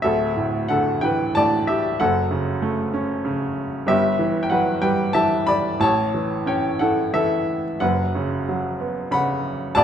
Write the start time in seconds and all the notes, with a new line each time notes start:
0.02 D1 D2 A4 E5
0.37 A2
0.68 D3 A4 F#5
1.01 E3 B4 G5
1.35 A2 D5 A5
1.67 G4 E5
2.00 F#1 F#2 A4 F#5
2.31 C#3
2.62 A3
2.94 C#4
3.25 C#3
3.87 G1 G2 G4 E5
4.19 E3
4.43 G5
4.50 F#3 B4 F#5
4.82 G3 B4 G5
5.13 E3 E5 A5
5.47 D5 B5
5.80 A1 A2 C#5 A5
6.14 E3
6.46 C#4 C#5 G5
6.79 E4 A4 F#5
7.14 E3 A4 E5
7.80 F#1 F#2 B4 F#5
8.15 C#3
8.49 F#3
8.80 B3
9.11 C#3 F#5 B5
9.75 D1 D2 D5 A5